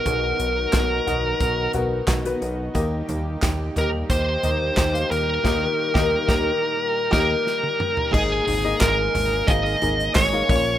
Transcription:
<<
  \new Staff \with { instrumentName = "Lead electric guitar" } { \time 4/4 \key ees \mixolydian \tempo 4 = 89 bes'2~ bes'8 r4. | r4. bes'8 c''4. bes'8~ | bes'2~ bes'8 bes'4. | aes'4 bes'4 ees''4 des''4 | }
  \new Staff \with { instrumentName = "Upright piano" } { \time 4/4 \key ees \mixolydian <b fis' aes'>4~ <b fis' aes'>16 r16 <b fis' dis''>8. r16 <b fis' bes'>8 r16 <b fis' b'>8 r16 | <bes g' ees''>4~ <bes g' ees''>16 r16 <bes g' ees''>8. r16 <bes g' ees''>8 r16 <bes g' f''>8 r16 | <ees bes g' ees''>8 r16 <ees bes g' ees''>8 <bes g' bes'>8 r8. <bes g' ees''>8 r4 | <bes ees' aes' ees''>8 r16 <bes ees' aes' ees''>4 r16 <bes ees' aes' f''>8 <bes ees' aes' ees''>8 r16 <bes ees' aes' f''>16 <bes des' f' des''>8 | }
  \new Staff \with { instrumentName = "Upright piano" } { \clef bass \time 4/4 \key ees \mixolydian b,4. r2 r8 | ees4. r2 r8 | r1 | aes,4. r2 bes,8 | }
  \new Staff \with { instrumentName = "Clean electric guitar" } { \time 4/4 \key ees \mixolydian <b, dis b dis' fis'>8 <b dis' fis'>8 <b, dis b dis' fis'>8 <b dis' fis'>8 <dis b dis' fis'>8 <b dis' fis'>8 <b, dis b dis' fis'>4 | <ees bes ees' g'>8 <bes ees' g'>8 <ees bes ees' g'>8 <bes ees' g'>8 <ees bes ees' g'>8 <bes ees' g'>8 <ees bes ees' g'>4 | <ees bes ees' g'>8 r16 <bes ees' g'>8 <ees bes ees' g'>8 r8. <bes ees' g'>8 r4 | <aes bes ees' aes'>8 <bes ees' aes'>8 <aes bes ees' aes'>8 <bes ees' aes'>8 <aes bes ees' aes'>4 <aes bes ees' aes'>8 <bes, f bes des' f'>8 | }
  \new Staff \with { instrumentName = "Analog synth pad" } { \clef bass \time 4/4 \key ees \mixolydian << { <b, dis fis fis'>1 | <bes, ees g g'>1~ | <bes, ees g g'>1 | <bes, ees aes aes'>2.~ <bes, ees aes aes'>8 <bes, des f f'>8 | } \\ { ees'1~ | ees'1~ | ees'1 | ees'2.~ ees'8 des'8 | } >> }
  \new Staff \with { instrumentName = "Analog synth bass" } { \clef bass \time 4/4 \key ees \mixolydian b,,8 b,,8 b,,8 b,,8 b,,8 b,,8 b,,8 b,,8 | ees,8 ees,8 ees,8 ees,8 ees,8 ees,8 ees,8 ees,8 | ees,8 r16 ees,8 ees,8 r8. ees,8 r4 | aes,,8 aes,,8 aes,,8 aes,,8 aes,,8 aes,,8 aes,,8 bes,,8 | }
  \new DrumStaff \with { instrumentName = "Drums" } \drummode { \time 4/4 <hh bd>8 hh8 <hc hh bd sn>8 <hh tomfh>8 <hh bd>8 <hh tomfh>8 <hc hh bd sn>16 hh16 hh8 | <hh bd>8 <hh tomfh>8 <hc hh bd sn>8 <hh tomfh>8 <hh bd>8 <hh tomfh>8 <hc hh bd sn>16 hh16 hh8 | <cymc bd sn>8. <bd sn>16 r16 <bd sn>8. r8 <cymc bd sn>8 sn16 tommh16 toml16 tomfh16 | <cymc bd>8 <hho hhp tomfh>8 <hc hho hhp bd sn>8 <hho hhp tomfh>8 <hho hhp bd>16 hho16 <hho hhp tomfh>16 hhp16 <hc hho hhp bd sn>8 <hho hhp bd tomfh>8 | }
>>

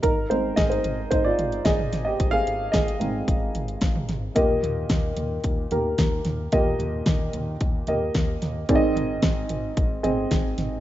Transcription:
<<
  \new Staff \with { instrumentName = "Upright piano" } { \time 4/4 \key ees \major \tempo 4 = 111 <ees' bes'>8 c''8 <aes' ees''>16 <ees' c''>8. <ees' c''>16 <f' d''>8. <aes' ees''>8. <g' ees''>16~ | <g' ees''>16 <aes' f''>8. <aes' ees''>2~ <aes' ees''>8 r8 | <bes g' ees''>2 r8 <bes g' bes'>4. | <bes g' ees''>2 r8 <bes g' ees''>4. |
<c' aes' d'' ees''>2 r8 <c' aes' ees''>4. | }
  \new Staff \with { instrumentName = "Upright piano" } { \clef bass \time 4/4 \key ees \major r8 <aes c' ees'>4. r2 | r4. <aes c' ees'>8 r2 | bes,4. r2 r8 | bes,4. r2 r8 |
<aes, ees>4. r2 r8 | }
  \new Staff \with { instrumentName = "Analog synth bass" } { \clef bass \time 4/4 \key ees \major aes,,8 aes,,8 aes,,8 aes,,8 aes,,8 aes,,8 aes,,8 aes,,8 | aes,,8 aes,,8 aes,,8 aes,,8 aes,,8 aes,,8 aes,,8 aes,,8 | ees,8 ees,8 ees,8 ees,8 ees,8 ees,8 ees,8 ees,8 | ees,8 ees,8 ees,8 ees,8 ees,8 ees,8 ees,8 ees,8 |
aes,,8 aes,,8 aes,,8 aes,,8 aes,,8 aes,,8 aes,,8 aes,,8 | }
  \new DrumStaff \with { instrumentName = "Drums" } \drummode { \time 4/4 <hh bd>8 hh8 <hh bd sn>16 hh16 <hh tomfh>8 <hh bd>8 <hh tomfh>16 hh16 <hh bd sn>16 tomfh16 <hh sn tomfh>8 | <hh bd>8 hh8 <hh bd sn>16 hh16 <hh tomfh>8 <hh bd>8 <hh tomfh>16 hh16 <hh bd sn>16 tomfh16 <hh sn tomfh>8 | <hh bd>8 <hh tomfh>8 <hh bd sn>8 <hh tomfh>8 <hh bd>8 <hh tomfh>8 <hh bd sn>8 <hh sn tomfh>8 | <hh bd>8 <hh tomfh>8 <hh bd sn>8 <hh tomfh>8 <hh bd>8 <hh tomfh>8 <hh bd sn>8 <hh sn tomfh>8 |
<hh bd>8 <hh tomfh>8 <hh bd sn>8 <hh tomfh>8 <hh bd>8 <hh tomfh>8 <hh bd sn>8 <hh sn tomfh>8 | }
>>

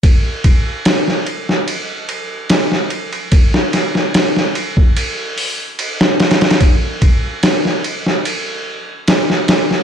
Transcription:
\new DrumStaff \with { instrumentName = "Drums" } \drummode { \time 4/4 \tempo 4 = 73 <bd cymr>8 <bd cymr>8 <cymr sn>16 sn16 cymr16 sn16 cymr8 cymr8 <cymr sn>16 sn16 cymr16 cymr16 | <bd cymr>16 sn16 <cymr sn>16 sn16 <cymr sn>16 sn16 cymr16 bd16 cymr8 hho8 cymr16 sn16 <cymr sn>32 <cymr sn>32 <cymr sn>32 <cymr sn>32 | <bd cymr>8 <bd cymr>8 <cymr sn>16 sn16 cymr16 sn16 cymr4 <cymr sn>16 sn16 <cymr sn>16 sn16 | }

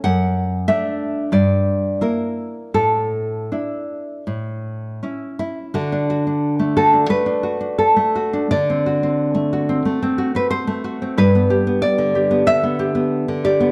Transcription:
\new Staff \with { instrumentName = "Nylon-string guitar" } { \time 4/4 \key d \major \tempo 4 = 89 << { fis''4 e''4 d''4 bes'4 | a'2.~ a'8 e'8 | fis'4. a'8 b'4 a'4 | d''2~ d''8. b'16 c''4 |
b'4 d''4 e''4. d''8 | } \\ { fis,4 <a d'>4 g,4 <bes e'>4 | a,4 <d' e'>4 a,4 <cis' e'>4 | d16 d'16 fis'16 d'8 a16 fis'16 d'16 a16 d'16 fis'16 d'8 a16 fis'16 d'16 | d16 c'16 fis'16 c'8 a16 fis'16 c'16 a16 c'16 fis'16 c'8 a16 fis'16 c'16 |
g,16 b16 g'16 b8 d16 g'16 b16 d16 b16 g'16 b8 d16 g'16 b16 | } >> }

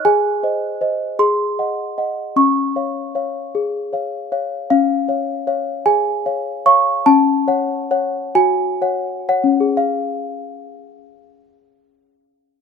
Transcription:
\new Staff \with { instrumentName = "Celesta" } { \time 6/8 \key des \major \tempo 4. = 51 << { aes''4. c'''4. | des'''2~ des'''8 r8 | f''4. aes''4 des'''8 | a''4. aes''4 ges''8 |
<des' aes' f''>2. | } \\ { aes'8 <c'' ees''>8 <c'' ees''>8 aes'8 <ees'' ges''>8 <ees'' ges''>8 | des'8 <des'' f''>8 <des'' f''>8 aes'8 <des'' f''>8 <des'' f''>8 | des'8 <des'' f''>8 <des'' f''>8 aes'8 <des'' f''>8 <des'' f''>8 | des'8 <des'' ges''>8 <des'' ges''>8 ges'8 <des'' ges''>8 des''8 |
r2. | } >> }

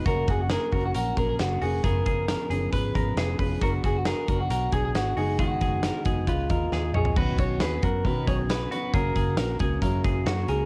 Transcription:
<<
  \new Staff \with { instrumentName = "Clean electric guitar" } { \time 4/4 \key fis \major \tempo 4 = 135 ais'8 gis'16 fis'16 ais'8 ais'16 fis'16 fis'8 ais'16 ais'16 fis'8 gis'8 | ais'2 b'4. r8 | ais'8 gis'16 fis'16 ais'8 ais'16 fis'16 fis'8 gis'16 gis'16 fis'8 gis'8 | fis'2 eis'4. gis'8 |
b'8 cis''8 b'8 ais'8 b'8 cis''8 b'8 b'8 | ais'4. r2 gis'8 | }
  \new Staff \with { instrumentName = "Clean electric guitar" } { \time 4/4 \key fis \major fis'8 fis'8 gis'8 fis'8 ais'8 gis'4 fis'8 | gis'8 gis'8 ais'8 gis'8 b'8 ais'8 gis'8 b'8 | fis'8 fis'8 gis'8 fis'8 ais'8 gis'4 fis'8 | gis'8 gis'8 ais'8 gis'8 b'8 ais'8 gis'8 cis''8 |
fis'8 fis'8 gis'8 fis'8 ais'8 gis'4 fis'8 | gis'8 gis'8 ais'8 gis'8 ais'8 gis'8 fis'8 ais'8 | }
  \new Staff \with { instrumentName = "Steel-string acoustic guitar" } { \time 4/4 \key fis \major <fis, cis fis ais cis' fis'>4 <fis ais cis' fis'>8 <fis ais cis' fis'>4 <fis ais cis' fis'>4 <fis ais cis' fis'>8 | <fis, cis eis b cis' gis'>4 <eis b cis' gis'>8 <eis b cis' gis'>4 <eis b cis' gis'>4 <eis b cis' gis'>8 | <fis b d' fis'>4 <fis b d' fis'>8 <b d' fis'>4 <b d' fis'>4 <gis b dis' fis'>8 | <fis, dis gis b dis' fis'>4 <gis b dis' fis'>8 <gis b dis' fis'>8 <cis' eis' gis' dis''>8 <eis' gis' dis''>4 <eis' gis' dis''>8 |
<b, dis fis b cis' fis'>4 <fis b cis' fis'>8 <fis b cis' fis'>8 <b, dis fis b cis' fis'>4 <fis b cis' fis'>8 <fis b cis' fis'>8 | <fis, cis fis ais cis' fis'>4 <fis ais cis' fis'>8 <fis ais cis' fis'>8 <fis, cis fis ais cis' fis'>4 <fis ais cis' fis'>4 | }
  \new Staff \with { instrumentName = "Fingered electric bass" } { \clef bass \time 4/4 \key fis \major fis,,8 fis,,8. r16 fis,,8 ais,,8 ais,,8 fis,,8 eis,,8 | fis,,8 fis,,8. r16 fis,,8 gis,,8 gis,,8 eis,,8 eis,,8 | fis,,8 fis,,8. r16 fis,,8 b,,8 b,,8 gis,,8 fis,,8~ | fis,,8 fis,,8. r16 fis,,8 cis,8 dis,8 dis,8 ais,,8 |
b,,8 b,,8 dis,8 fis,8 b,8 b,,4 r8 | fis,,8 fis,,8 ais,,8 cis,8 fis,8 fis,,8 fis,8 cis,8 | }
  \new DrumStaff \with { instrumentName = "Drums" } \drummode { \time 4/4 <hh bd>8 <hh bd>8 <hh sn>8 <hh bd>8 hh8 <hh bd>8 <hh sn>8 hho8 | <hh bd>8 <hh bd>8 <hh sn>8 hh8 <hh bd>8 <hh bd>8 <hh sn>8 <hho bd>8 | <hh bd>8 <hh bd>8 <hh sn>8 <hh bd>8 hh8 <hh bd>8 <hh sn>8 hho8 | <hh bd>8 <hh bd>8 <hh sn>8 <hh bd>8 <hh bd>8 <hh bd>8 sn8 toml16 tomfh16 |
<cymc bd>8 <hh bd>8 <hh sn>8 <hh bd>8 <hh bd>8 <hh bd>8 <hh sn>8 hh8 | <hh bd>8 <hh bd>8 <hh sn>8 <hh bd>8 <hh bd>8 <hh bd>8 <hh sn>8 hh8 | }
>>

